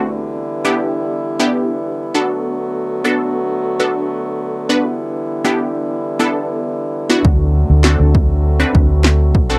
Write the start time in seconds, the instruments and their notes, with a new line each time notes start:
Already playing: french horn section D3
0.05 french horn section E3 G3 B3 E4
0.65 synth pluck B3 D4 E4 G4
1.39 synth pluck B3 D4 E4 G4
2.14 french horn section D3 F#3 A3 F#4, synth pluck B3 D4 F#4 A4
3.04 synth pluck B3 D4 F#4 A4
3.80 synth pluck B3 D4 F#4 A4
4.69 synth pluck B3 D4 F#4 B4
4.85 french horn section E3 G3 E4
5.44 synth pluck B3 D4 E4 G4
6.19 synth pluck B3 D4 E4 A4
7.09 synth pluck B3 D4 E4 F#4
7.25 fingered electric bass D2, french horn section F#3 A3 C4 F#4, kick
7.70 fingered electric bass D2
7.84 synth pluck C4 D4 F#4 A4, snare, clap
8.00 fingered electric bass D2
8.15 kick
8.60 synth pluck C4 D4 F#4 B4
8.75 fingered electric bass D2, kick
9.04 snare, clap
9.35 fingered electric bass B1, kick
9.50 synth pluck C4 D4 F#4 A4